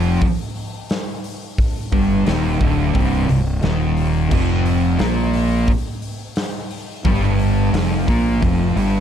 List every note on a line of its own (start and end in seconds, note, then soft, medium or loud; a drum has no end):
0.00 0.18 F1 loud
0.00 0.21 F2 loud
0.00 0.21 F3 loud
0.21 kick loud
0.21 open hi-hat loud
0.55 open hi-hat medium
0.90 snare loud
0.90 open hi-hat medium
1.24 open hi-hat medium
1.58 kick loud
1.58 open hi-hat medium
1.92 2.24 G1 loud
1.92 2.26 G2 medium
1.92 2.26 G3 loud
1.92 kick loud
1.92 open hi-hat medium
2.26 2.59 D#1 loud
2.26 2.60 D#2 loud
2.26 2.60 D#3 loud
2.26 snare loud
2.26 open hi-hat loud
2.60 2.93 D1 loud
2.60 2.94 D2 medium
2.60 2.94 D3 loud
2.60 kick loud
2.60 open hi-hat medium
2.94 3.27 C1 loud
2.94 3.27 C2 medium
2.94 3.28 C3 loud
2.94 kick loud
2.94 open hi-hat medium
3.28 3.61 C1 medium
3.28 3.56 C2 medium
3.28 open hi-hat medium
3.63 4.28 D#1 loud
3.63 4.30 D#2 loud
3.63 4.30 D#3 loud
3.63 snare loud
3.63 open hi-hat medium
3.97 open hi-hat medium
4.31 4.96 F1 loud
4.31 4.99 F2 loud
4.31 4.99 F3 loud
4.31 kick loud
4.31 crash loud
4.66 open hi-hat medium
4.99 5.64 A#1 loud
4.99 5.67 A#2 medium
4.99 5.67 A#3 loud
4.99 snare loud
4.99 open hi-hat medium
5.33 open hi-hat medium
5.67 kick loud
5.67 open hi-hat medium
6.02 open hi-hat medium
6.36 snare loud
6.36 open hi-hat medium
6.71 open hi-hat medium
7.05 7.70 G1 medium
7.05 7.73 G2 medium
7.05 7.73 G3 loud
7.05 kick loud
7.05 open hi-hat medium
7.39 open hi-hat medium
7.73 8.05 F1 loud
7.73 8.07 F2 loud
7.73 8.07 F3 loud
7.73 snare loud
7.73 open hi-hat loud
8.08 8.40 A#1 medium
8.08 8.41 A#2 medium
8.08 8.42 A#3 loud
8.08 kick loud
8.08 open hi-hat medium
8.42 8.74 F1 loud
8.42 8.76 F2 medium
8.42 8.76 F3 loud
8.42 kick loud
8.42 open hi-hat medium
8.76 9.00 G1 loud
8.76 9.00 G2 loud
8.76 9.00 G3 loud
8.76 open hi-hat medium